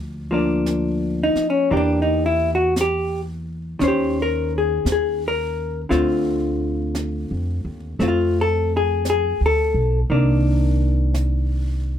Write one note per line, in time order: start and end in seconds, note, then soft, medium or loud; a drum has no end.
0.00 1.31 D2 medium
0.00 0.30 F3 soft
0.00 0.31 A#3 soft
0.31 1.70 F3 soft
0.31 1.70 A#3 soft
0.31 1.23 D4 soft
0.66 brush sweep soft
0.66 snare soft
0.66 hi-hat pedal soft
1.23 1.46 D#4 medium
1.35 muted upright bass stroke soft
1.35 snare soft
1.50 1.69 C#4 medium
1.70 3.76 E2 medium
1.70 3.80 E3 soft
1.70 3.80 A#3 soft
1.70 1.76 D4 soft
1.70 2.80 G4 soft
1.70 brush sweep soft
1.77 2.02 D4 medium
2.02 2.25 D#4 medium
2.26 2.50 E4 medium
2.55 2.73 F#4 medium
2.76 brush sweep soft
2.76 snare soft
2.76 hi-hat pedal soft
2.81 3.21 G4 medium
3.79 4.82 D#2 medium
3.79 5.89 D#3 soft
3.79 5.91 C#4 soft
3.79 brush sweep soft
3.79 snare soft
3.84 4.18 G4 medium
3.84 5.92 C5 soft
4.22 4.53 A#4 medium
4.58 4.88 G#4 medium
4.85 5.86 D#2 medium
4.85 brush sweep soft
4.85 snare soft
4.85 hi-hat pedal soft
4.92 5.23 G#4 medium
5.28 5.80 A#4 medium
5.89 7.27 D2 medium
5.89 10.09 D3 soft
5.89 7.98 A3 soft
5.89 8.00 C4 soft
5.89 8.02 F4 soft
5.89 brush sweep soft
5.89 snare soft
6.95 brush sweep soft
6.95 snare soft
6.95 hi-hat pedal soft
7.31 7.63 F2 medium
7.65 7.97 D#2 medium
7.99 9.35 F2 medium
7.99 10.09 A3 soft
7.99 10.10 C4 soft
7.99 8.07 F4 soft
7.99 brush sweep soft
7.99 snare soft
8.08 8.38 F4 soft
8.41 8.72 A4 medium
8.77 9.07 G#4 medium
9.05 brush sweep soft
9.05 snare soft
9.05 hi-hat pedal soft
9.10 9.41 G#4 medium
9.41 9.72 D2 soft
9.46 9.99 A4 medium
9.74 10.07 B1 medium
10.10 11.99 C2 medium
10.10 11.99 D#3 soft
10.10 11.99 A#3 soft
10.10 11.99 D4 soft
10.10 brush sweep soft
11.14 brush sweep soft
11.14 snare soft
11.14 hi-hat pedal soft